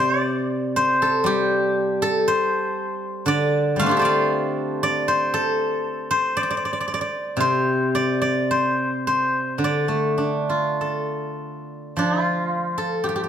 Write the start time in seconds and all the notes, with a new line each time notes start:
Already playing: C3 C5
0.20 D5
0.76 C5
1.02 A4
1.24 G3 G4
2.02 A4
2.28 C5
3.26 D3 D5
3.76 G3 A3 F5
3.82 C4
3.86 D4 F4
3.91 G4
3.97 A4 C5
4.01 D5 F5
4.83 D5
5.08 C5
5.34 A4
6.11 C5
6.37 D5
6.43 D5
6.50 D5
6.57 D5
6.65 D5
6.73 D5
6.80 D5
6.88 D5
6.94 D5
7.01 D5
7.37 C3 C5
7.95 D5
8.22 D5
8.51 C5
9.07 C5
9.58 D3
9.64 D5
9.88 A3
10.18 D4
10.49 F4
10.81 A4
11.97 F3 D4
12.23 F4
12.78 A4
13.04 G4
13.09 G4
13.16 G4
13.24 G4